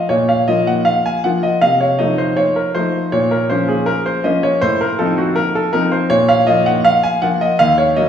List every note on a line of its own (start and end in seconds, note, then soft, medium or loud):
0.09 0.46 A#2 soft
0.09 0.28 C#5 medium
0.29 0.48 F5 medium
0.48 1.20 F3 soft
0.48 1.20 A#3 soft
0.48 1.20 F4 soft
0.48 0.67 D#5 medium
0.67 0.86 F#5 medium
0.85 1.04 F5 medium
1.06 1.24 G#5 medium
1.24 1.58 F3 soft
1.24 1.58 A#3 soft
1.24 1.58 F4 soft
1.24 1.43 F#5 medium
1.43 1.61 D#5 medium
1.61 1.98 C3 soft
1.61 1.80 F5 medium
1.81 1.99 C#5 medium
1.99 2.71 F3 soft
1.99 2.71 A3 soft
1.99 2.71 D#4 soft
1.99 2.17 D#5 medium
2.18 2.37 C5 medium
2.37 2.55 C#5 medium
2.56 2.75 A#4 medium
2.75 3.08 F3 soft
2.75 3.09 A3 soft
2.75 3.09 D#4 soft
2.75 3.12 C5 medium
3.12 3.48 A#2 soft
3.12 3.31 C#5 medium
3.31 3.50 A#4 medium
3.50 4.21 F3 soft
3.50 4.21 A#3 soft
3.50 4.21 C#4 soft
3.50 3.68 C5 medium
3.68 3.87 G#4 medium
3.86 4.05 A#4 medium
4.06 4.24 C5 medium
4.24 4.58 F3 soft
4.24 4.58 A#3 soft
4.24 4.58 C#4 soft
4.24 4.43 D#5 medium
4.43 4.62 C#5 medium
4.61 4.98 A2 medium
4.61 4.80 C5 medium
4.81 4.99 A#4 medium
4.99 5.69 F3 soft
4.99 5.69 C4 soft
4.99 5.70 D#4 soft
4.99 5.17 A4 medium
5.18 5.36 F#4 medium
5.36 5.54 A#4 medium
5.55 5.73 A4 medium
5.73 6.07 F3 soft
5.73 6.07 C4 soft
5.73 6.07 D#4 soft
5.73 5.91 A#4 medium
5.92 6.10 C5 medium
6.10 6.46 A#2 medium
6.10 6.29 C#5 medium
6.29 6.47 F5 medium
6.47 7.18 F3 soft
6.47 7.18 A#3 soft
6.47 7.18 F4 soft
6.47 6.66 D#5 medium
6.66 6.85 F#5 medium
6.85 7.03 F5 medium
7.03 7.22 G#5 medium
7.22 7.56 F3 soft
7.22 7.56 A#3 soft
7.22 7.56 F4 soft
7.22 7.41 F#5 medium
7.41 7.60 D#5 medium
7.59 7.96 D#2 medium
7.59 7.78 F5 medium
7.78 7.97 C#5 medium
7.96 8.09 F#3 soft
7.96 8.09 A#3 soft
7.96 8.09 D#4 soft
7.96 8.09 D#5 medium